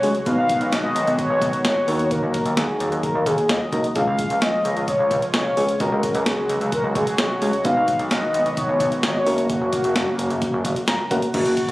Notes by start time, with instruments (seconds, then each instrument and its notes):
Already playing: analog synth pad C#3 F#3 G#3 F#4, soft synth lead C#5
0.03 analog synth bass C#2, fm electric piano G#3 C#4 F#4 G#4, open hi-hat
0.15 closed hi-hat
0.26 analog synth bass B1, analog synth pad D#3 G#3 B3, fm electric piano B3 D#4 F#4 B4, soft synth lead F5, kick, closed hi-hat
0.38 analog synth bass B1
0.49 kick, closed hi-hat
0.61 analog synth bass B1, closed hi-hat
0.73 analog synth bass B1, soft synth lead D#5, snare, closed hi-hat
0.96 analog synth bass B1, closed hi-hat
1.07 analog synth bass B1, closed hi-hat
1.19 soft synth lead C#5, kick, closed hi-hat
1.30 analog synth bass B1
1.42 analog synth bass B1, kick, closed hi-hat
1.53 closed hi-hat
1.65 analog synth bass G#1, soft synth lead C#5, snare, closed hi-hat
1.88 analog synth bass D#2, analog synth pad F#3 A#3, fm electric piano A#3 D#4 F#4 A#4, open hi-hat
1.99 closed hi-hat
2.11 soft synth lead A#4, kick, closed hi-hat
2.23 analog synth bass D#2
2.34 kick, closed hi-hat
2.46 analog synth bass D#2, closed hi-hat
2.57 analog synth bass D#2, soft synth lead G#4, snare, closed hi-hat
2.80 analog synth bass D#2, closed hi-hat
2.92 analog synth bass D#2, closed hi-hat
3.03 soft synth lead A#4, kick, closed hi-hat
3.15 analog synth bass D#2
3.26 analog synth bass D#2, soft synth lead G#4, kick, closed hi-hat
3.38 closed hi-hat
3.49 analog synth bass D#2, soft synth lead D#5, snare, closed hi-hat
3.72 analog synth bass C#2, fm electric piano A#3 D#4 F#4 A#4, kick, closed hi-hat
3.84 closed hi-hat
3.96 analog synth bass C#2, analog synth pad C#3 F3 G#3 F4, fm electric piano G#3 C#4 F4 G#4, soft synth lead F5, kick, closed hi-hat
4.07 analog synth bass C#2
4.19 kick, closed hi-hat
4.30 analog synth bass C#2, closed hi-hat
4.42 analog synth bass C#2, soft synth lead D#5, snare, closed hi-hat
4.65 analog synth bass C#2, closed hi-hat
4.76 analog synth bass C#2, closed hi-hat
4.88 soft synth lead C#5, kick, closed hi-hat
4.99 analog synth bass C#2
5.11 analog synth bass C#2, kick, closed hi-hat
5.22 closed hi-hat
5.34 analog synth bass B1, soft synth lead C#5, snare, closed hi-hat
5.57 analog synth bass C#2, fm electric piano G#3 C#4 F4 G#4, open hi-hat
5.69 closed hi-hat
5.80 analog synth bass C#2, analog synth pad F#3 F#4, fm electric piano G#3 C#4 F#4 G#4, soft synth lead A#4, kick, closed hi-hat
5.92 analog synth bass C#2
6.03 kick, closed hi-hat
6.15 analog synth bass C#2, closed hi-hat
6.26 analog synth bass C#2, soft synth lead G#4, snare, closed hi-hat
6.49 analog synth bass C#2, closed hi-hat
6.61 analog synth bass C#2, closed hi-hat
6.72 soft synth lead A#4, kick, closed hi-hat
6.84 analog synth bass C#2
6.95 analog synth bass C#2, soft synth lead G#4, kick, closed hi-hat
7.07 closed hi-hat
7.18 analog synth bass B1, soft synth lead C#5, snare, closed hi-hat
7.42 analog synth bass C#2, fm electric piano G#3 C#4 F#4 G#4, open hi-hat
7.53 closed hi-hat
7.65 analog synth bass B1, analog synth pad D#3 B3, fm electric piano B3 D#4 F#4 B4, soft synth lead F5, kick, closed hi-hat
7.76 analog synth bass B1
7.88 kick, closed hi-hat
7.99 analog synth bass B1, closed hi-hat
8.11 analog synth bass B1, soft synth lead D#5, snare, closed hi-hat
8.34 analog synth bass B1, closed hi-hat
8.46 analog synth bass B1, closed hi-hat
8.57 soft synth lead C#5, kick, closed hi-hat
8.69 analog synth bass B1
8.80 analog synth bass B1, kick, closed hi-hat
8.92 closed hi-hat
9.03 analog synth bass G#1, soft synth lead C#5, snare, closed hi-hat
9.10 soft synth lead D#5
9.18 soft synth lead C#5
9.26 analog synth bass F#1, analog synth pad C#3 F#3 A#3, fm electric piano A#3 C#4 F#4 A#4, open hi-hat
9.38 closed hi-hat
9.50 soft synth lead F#4, kick, closed hi-hat
9.61 analog synth bass F#1
9.73 kick, closed hi-hat
9.84 analog synth bass F#1, closed hi-hat
9.96 analog synth bass F#1, snare, closed hi-hat
10.19 analog synth bass F#1, closed hi-hat
10.30 analog synth bass F#1, closed hi-hat
10.42 kick, closed hi-hat
10.53 analog synth bass F#1
10.65 analog synth bass F#1, kick, closed hi-hat
10.76 closed hi-hat
10.88 analog synth bass F#1, fm electric piano A#5, snare, closed hi-hat
11.11 analog synth bass F1, fm electric piano A#3 C#4 F#4 A#4 F#5, kick, closed hi-hat
11.22 closed hi-hat
11.34 analog synth bass F#1, fm electric piano A#3 C#4 F#4 A#4, soft synth lead F#4, kick, closed hi-hat, crash
11.46 analog synth bass F#1, closed hi-hat
11.57 kick, closed hi-hat
11.69 analog synth bass F#1, closed hi-hat